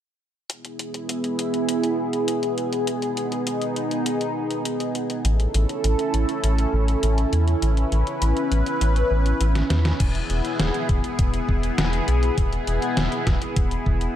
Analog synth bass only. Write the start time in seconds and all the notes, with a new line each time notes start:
5.25 A1
5.54 A1
5.84 A1
6.14 A1
6.43 A1
6.73 A1
7.03 A1
7.33 E2
7.62 A1
7.92 A1
8.22 A1
8.52 A1
8.81 A1
9.11 A1
9.41 A1
9.70 E2
10.00 E1
10.30 E1
10.59 E1
10.89 E1
11.19 E1
11.49 E1
11.78 E1
12.08 B1
12.38 E1
12.67 E1
12.97 E1
13.27 E1
13.57 E1
13.86 E1